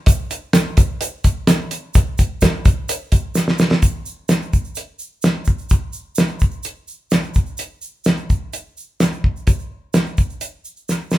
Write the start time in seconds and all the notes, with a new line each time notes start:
0.06 kick, closed hi-hat, shaker
0.31 closed hi-hat, shaker
0.53 snare, closed hi-hat, shaker
0.77 kick, closed hi-hat, shaker
1.01 closed hi-hat, shaker
1.24 kick, closed hi-hat, shaker
1.47 snare, closed hi-hat, shaker
1.71 closed hi-hat, shaker
1.94 kick, closed hi-hat, shaker
2.18 kick, closed hi-hat, shaker
2.41 kick, snare, closed hi-hat, shaker
2.65 kick, closed hi-hat, shaker
2.89 closed hi-hat, shaker
3.12 kick, closed hi-hat, shaker
3.35 snare, shaker
3.48 snare
3.58 snare, shaker
3.71 snare
3.82 kick, closed hi-hat, shaker
4.06 shaker
4.29 snare, closed hi-hat, shaker
4.42 shaker
4.53 kick, shaker
4.64 shaker
4.75 closed hi-hat, shaker
4.99 shaker
5.22 snare, closed hi-hat, shaker
5.45 kick, shaker
5.58 shaker
5.69 kick, closed hi-hat, shaker
5.93 shaker
6.15 snare, closed hi-hat, shaker
6.40 kick, shaker
6.51 shaker
6.63 closed hi-hat, shaker
6.88 shaker
7.11 snare, closed hi-hat, shaker
7.23 shaker
7.34 kick, shaker
7.46 shaker
7.58 closed hi-hat, shaker
7.82 shaker
8.04 snare, closed hi-hat, shaker
8.17 shaker
8.30 kick, shaker
8.53 closed hi-hat, shaker
8.77 shaker
9.00 snare, closed hi-hat, shaker
9.12 shaker
9.24 kick
9.36 shaker
9.47 kick, closed hi-hat, shaker
9.93 snare, closed hi-hat, shaker
10.06 shaker
10.17 kick, shaker
10.30 shaker
10.41 closed hi-hat, shaker
10.65 shaker
10.77 shaker
10.89 snare, shaker
11.11 snare, shaker